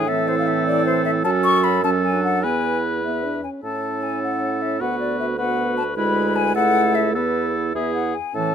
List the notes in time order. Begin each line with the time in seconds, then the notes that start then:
Already playing: A2 D4 G#4
0.08 E3 C4 A4 E5
0.28 C5
0.39 F5
0.48 E5
0.67 D5
0.86 C5
1.05 E5
1.24 F#2 F#3 C#4 A4 A5
1.44 C#6
1.64 B5
1.84 F#3 C#4 A4 A5
2.03 G#5
2.13 D4
2.24 F#5
2.43 E2 B3 E4 B4 G#5
3.04 B3 E5
3.25 D4
3.44 C#4 G#5
3.63 A2 C#4 E4 A4 A5
4.03 G#5
4.23 F#5
4.62 E5
4.81 D2 B3 F#4 B4 F#5
5.00 D5
5.20 E5
5.38 B3 F#4 B4 F#5
5.77 A5
5.96 D2 G#3 E4 B4 B5
6.36 G#5
6.55 C#2 A3 E4 A4 F#5
6.95 E5
7.14 E2 B3 E4 A4 B4
7.75 E2 B3 E4 G#4 E5
7.95 F#5
8.14 G#5
8.34 A2 E3 C#4 A4 A5